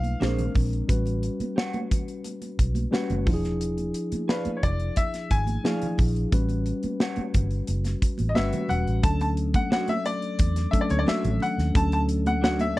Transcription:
Already playing: B1 G3 D4 E4 B4 F5
0.03 closed hi-hat, high conga
0.20 A#1 G#3 C4 D4 G#4 C5, snare, muted conga, high conga
0.28 A#4
0.39 closed hi-hat, high conga, low conga
0.55 A#1, kick, open hi-hat, low conga
0.73 closed hi-hat
0.88 A1 G3 C#4 F#4 B4, kick, closed hi-hat, muted conga
1.06 closed hi-hat, muted conga
1.23 closed hi-hat
1.40 muted fingered electric bass stroke, closed hi-hat, high conga
1.56 G4 C#5 F#5, snare, muted conga
1.73 closed hi-hat, high conga
1.91 kick, closed hi-hat, low conga
2.08 closed hi-hat
2.24 closed hi-hat, muted conga
2.42 closed hi-hat, muted conga
2.59 B1, kick, closed hi-hat
2.75 closed hi-hat, high conga
2.91 G3 C#4 F#4 G4 B4 C#5 F#5, snare, muted conga, high conga
3.10 F#1, closed hi-hat, muted conga, high conga, low conga
3.25 E1 F3 D4 E4 F4, kick, open hi-hat, low conga
3.34 G#4
3.44 snare, closed hi-hat
3.61 closed hi-hat
3.78 closed hi-hat, muted conga
3.94 closed hi-hat
4.12 muted fingered electric bass stroke, closed hi-hat, high conga
4.28 G#4 B4 D5 F5, snare, muted conga
4.45 muted fingered electric bass stroke, closed hi-hat, muted conga, high conga
4.57 C#5
4.63 F1 D5, kick, closed hi-hat, low conga
4.80 closed hi-hat
4.96 E5, kick, closed hi-hat, muted conga
5.14 snare, closed hi-hat
5.31 G#1 G#5, kick, closed hi-hat
5.47 closed hi-hat, high conga
5.64 F3 D4 E4 G#4 D5 F5, snare, muted conga, high conga
5.82 closed hi-hat, high conga, low conga
5.98 A#1, kick, open hi-hat, low conga
6.16 closed hi-hat
6.32 A1 G3 C#4 F#4 B4, kick, closed hi-hat, muted conga
6.49 closed hi-hat, muted conga
6.66 closed hi-hat
6.83 muted fingered electric bass stroke, closed hi-hat, high conga
7.00 G4 C#5 F#5, snare, muted conga
7.16 muted fingered electric bass stroke, closed hi-hat, high conga
7.34 G1, kick, closed hi-hat, low conga
7.51 closed hi-hat
7.67 F#1, closed hi-hat, muted conga
7.84 snare, closed hi-hat, muted conga
8.02 muted fingered electric bass stroke, kick, closed hi-hat
8.18 A1, closed hi-hat, high conga
8.29 D#5
8.35 G1 G3 C#4 F#4 G4 B4 C#5 E5 F#5, snare, high conga
8.53 closed hi-hat, muted conga, high conga, low conga
8.69 E1 F#5, closed hi-hat, low conga
8.87 A1, closed hi-hat
9.03 D2 F#3 A3 C#4 D4 A4 A5, kick, closed hi-hat
9.20 A5, closed hi-hat, muted conga
9.37 closed hi-hat
9.54 F#5, kick, closed hi-hat, high conga
9.71 D4 F#4 C#5 F#5, snare, muted conga
9.88 E5, closed hi-hat, high conga
10.06 D5, closed hi-hat
10.22 closed hi-hat
10.39 E2, kick, closed hi-hat, muted conga
10.56 snare, closed hi-hat, muted conga
10.71 F#3 A3 C#4 D4 A4 E5, kick, closed hi-hat
10.81 D5
10.90 D2 C#5, closed hi-hat, high conga
10.99 D5
11.06 D4 F#4 C#5 E5, snare, high conga
11.24 A1, closed hi-hat, muted conga, low conga
11.40 F#5, closed hi-hat, low conga
11.58 D#2, snare, closed hi-hat
11.74 D2 F#3 A3 C#4 D4 A4 A5, kick, closed hi-hat, muted conga
11.92 A5, closed hi-hat
12.09 closed hi-hat
12.26 F#5, closed hi-hat, high conga
12.42 D4 F#4 C#5 F#5, snare
12.59 E5, closed hi-hat, muted conga, high conga

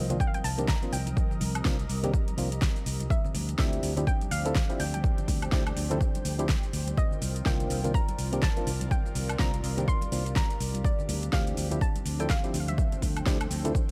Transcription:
Already playing: C2 F3 C4 A#4 C5 D#5 G5 D#6
0.04 A#5
0.10 D#3 A#3 C4 D4 F4, closed hi-hat, low conga, shaker
0.20 G5, kick, shaker
0.27 F5
0.34 G5, closed hi-hat, high conga, shaker
0.44 C2 A5, open hi-hat, shaker
0.58 D#3 A#3 C4 D4 G4, closed hi-hat, shaker
0.68 A#5, kick, snare, high conga, shaker
0.82 D#3 A#3 C4 D4 F4, closed hi-hat, shaker
0.93 C2 G5, open hi-hat, shaker
1.07 closed hi-hat, high conga, shaker
1.17 G4, kick, shaker
1.31 low conga, shaker
1.41 C2, open hi-hat, high conga, shaker
1.55 closed hi-hat, high woodblock, shaker
1.65 C2 D#3 A#3 C4 D4 F4, kick, snare, shaker
1.79 closed hi-hat, shaker
1.89 C2, open hi-hat, high conga, shaker
2.03 D#3 A#3 C4 D4 G4, closed hi-hat, low conga, shaker
2.14 kick, shaker
2.28 closed hi-hat, high conga, shaker
2.37 C2 D#3 A#3 C4 D4 F4, open hi-hat, shaker
2.52 closed hi-hat, shaker
2.62 kick, snare, high conga, shaker
2.76 closed hi-hat, shaker
2.86 C2, open hi-hat, shaker
3.00 closed hi-hat, high conga, shaker
3.10 F3 C4 D4 G4 E5, kick, shaker
3.24 D5, low conga, shaker
3.34 D2 C5, open hi-hat, high conga, shaker
3.41 G5
3.49 closed hi-hat, shaker
3.58 D2 F3 C4 D4 E4 G4 E5, kick, snare, shaker
3.73 closed hi-hat, shaker
3.83 D2, open hi-hat, high conga, shaker
3.97 F3 C4 D4 E4 G4, closed hi-hat, low conga, shaker
4.07 G5, kick, shaker
4.21 closed hi-hat, high conga, shaker
4.31 D2 F5, open hi-hat, shaker
4.45 F3 C4 D4 E4 A4, closed hi-hat, shaker
4.55 kick, snare, high conga, shaker
4.69 F3 C4 D4 E4 G4, closed hi-hat, shaker
4.80 D2 G5, open hi-hat, shaker
4.94 G5, closed hi-hat, high conga, shaker
5.04 kick, shaker
5.18 closed hi-hat, low conga, shaker
5.28 D2, kick, open hi-hat, high conga, shaker
5.42 closed hi-hat, high woodblock, shaker
5.52 D2 F3 C4 D4 E4 G4, kick, snare, shaker
5.67 closed hi-hat, high woodblock, shaker
5.76 D2, open hi-hat, high conga, shaker
5.90 F3 C4 D4 E4 A4, closed hi-hat, low conga, shaker
6.01 kick, shaker
6.15 closed hi-hat, high conga, shaker
6.25 D2, open hi-hat, shaker
6.39 F3 C4 D4 E4 G4, closed hi-hat, shaker
6.49 kick, snare, high conga, shaker
6.63 closed hi-hat, shaker
6.73 D2, open hi-hat, shaker
6.87 closed hi-hat, high conga, shaker
6.97 D#3 C4 F4 A#4 D#5, kick, shaker
7.11 low conga, shaker
7.21 C2, open hi-hat, high conga, shaker
7.25 A#4 D5
7.36 closed hi-hat, shaker
7.45 C2 D#3 A#3 C4 D4 F4 G5, kick, snare, shaker
7.50 F5
7.60 closed hi-hat, shaker
7.70 C2, open hi-hat, high conga, shaker
7.84 D#3 A#3 C4 D4 F4, closed hi-hat, low conga, shaker
7.94 A#5, kick, shaker
8.09 closed hi-hat, high conga, shaker
8.19 C2, open hi-hat, shaker
8.32 D#3 A#3 C4 D4 G4, closed hi-hat, shaker
8.42 A5, kick, snare, high conga, shaker
8.56 D#3 A#3 C4 D4 F4, closed hi-hat, shaker
8.67 C2, open hi-hat, shaker
8.81 closed hi-hat, high conga, shaker
8.91 G4 G5, kick, shaker
9.06 low conga, shaker
9.15 C2, open hi-hat, high conga, shaker
9.29 closed hi-hat, high woodblock, shaker
9.39 C2 D#3 A#3 C4 D4 F4 A#5, kick, snare, shaker
9.54 closed hi-hat, shaker
9.64 C2, open hi-hat, high conga, shaker
9.77 D#3 A#3 C4 D4 G4, closed hi-hat, low conga, shaker
9.88 C6, kick, shaker
10.01 closed hi-hat, high conga, shaker
10.11 C2 D#3 A#3 C4 D4 F4, open hi-hat, shaker
10.26 closed hi-hat, shaker
10.36 A#5, kick, snare, high conga, shaker
10.50 closed hi-hat, shaker
10.60 C2, open hi-hat, shaker
10.74 closed hi-hat, high conga, shaker
10.85 F3 C4 D4 D5, kick, shaker
10.99 C5, low conga, shaker
11.09 D2, open hi-hat, high conga, shaker
11.23 closed hi-hat, shaker
11.32 D2 E3 F3 C4 D4 G4 F5, kick, snare, shaker
11.44 G5, closed hi-hat
11.48 shaker
11.57 D2, open hi-hat, high conga, shaker
11.71 F3 C4 D4 E4 G4, closed hi-hat, low conga, shaker
11.81 A5, kick, shaker
11.96 closed hi-hat, high conga, shaker
12.06 D2, open hi-hat, shaker
12.19 F3 C4 D4 E4 A4 G5, closed hi-hat, shaker
12.30 F5, kick, snare, high conga, shaker
12.43 F3 C4 D4 E4 G4, closed hi-hat, shaker
12.54 D2, open hi-hat, shaker
12.60 F5
12.68 E5, closed hi-hat, high conga, shaker
12.78 A4, kick, shaker
12.92 closed hi-hat, low conga, shaker
13.02 D2, kick, open hi-hat, high conga, shaker
13.17 closed hi-hat, high woodblock, shaker
13.26 D2 F3 C4 D4 E4 G4, kick, snare, shaker
13.41 closed hi-hat, high woodblock, shaker
13.51 D2, open hi-hat, high conga, shaker
13.64 F3 C4 D4 E4 A4, closed hi-hat, low conga, shaker
13.75 kick, shaker

